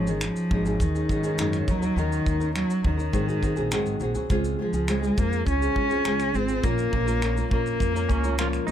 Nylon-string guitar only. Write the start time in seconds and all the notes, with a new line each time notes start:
0.07 F#3 C#4 D#4 G#4
0.51 F#3 C#4 D#4 G#4
0.66 F#3 C#4 D#4 G#4
0.95 F#3 C#4 D#4 G#4
1.09 F#3 C#4 D#4 G#4
1.23 F#3 C#4 D#4 G#4
1.39 G#2 C#3 F#3 C#4 D#4 G#4
1.67 F#3 C#4 D#4 A#4
1.82 C#4 D#4 A#4
1.97 D#3 F#3 C#4 D#4 A#4
2.40 C#4 D#4 A#4
2.83 F#3 C#4 D#4 A#4
2.97 C#4 D#4 A#4
3.12 G#2 D#3 F#3 C4 F#4 G#4
3.27 F#3 C4 F#4 G#4
3.42 F#3 C4 F#4 G#4
3.56 F#3 C4 F#4 G#4
3.71 G#2 D#3 F#3 C4 F#4 G#4
4.00 F#3 C4 F#4 G#4
4.14 F#3 C4 F#4 G#4
4.29 C#3 G#3 C4 F4 G#4
4.59 G#3 C4 F4 G#4
4.74 C4 F4 G#4
4.87 C#3 G#3 C4 F4 G#4
5.02 C4 F4 G#4
5.16 G#3 C4 F4 G#4
5.61 C4 F4 G#4
5.75 G#3 C4 F4 G#4
5.90 C4 F4 G#4
6.05 C#3 G#3 C4 F4 G#4
6.33 G#3 C4 F4 G#4
6.48 C4 F4 G#4
6.63 A#2 F3 A#3 C#4 F4 A#4
6.92 A#3 C#4 F4 A#4
7.06 A#3 C#4 F4 A#4
7.21 A#2 F3 A#3 C#4 F4 A#4
7.36 A#3 C#4 F4 A#4
7.51 A#3 C#4 F4 A#4
7.94 A#3 C#4 F4 A#4
8.09 A#3 C#4 F4 A#4
8.24 A#3 C#4 F4 A#4
8.38 A#2 F3 A#3 C#4 F4 A#4
8.67 A#3 C#4